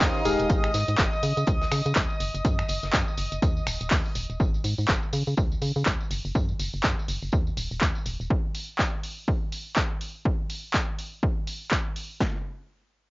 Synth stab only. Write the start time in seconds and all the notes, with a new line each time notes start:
Already playing: D#3 C#4 F4 G4 C5
0.25 G#3 D#4 G4 G#4 F5